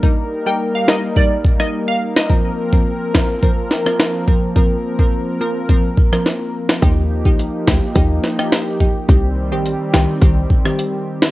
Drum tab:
HH |----------------|----------------|----------------|x---x---x---x---|
SD |------o----r---o|------o---oro---|-----------ro--o|------o---oro---|
BD |o-------o-o-----|o--o--o-o-----o-|o--o----o-o-----|o--o--o-o-----o-|

HH |x---x---x---x---|
SD |------o----r---o|
BD |o-------o-o-----|